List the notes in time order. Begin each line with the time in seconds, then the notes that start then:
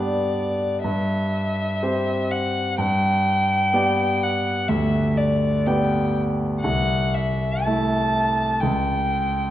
Already playing: G2 B3 D4 G4 D5
0.84 G2 E5
1.82 C4 G4 C5
2.31 F#5
2.78 G2 G5
3.73 B3 G4 D5
4.23 F#5
4.69 D2 E5
5.18 D5
5.66 B3 G4 D5 G5
6.62 C2 F#5
7.14 E5
7.64 A3 E4 E5 A5
8.60 C#2 G5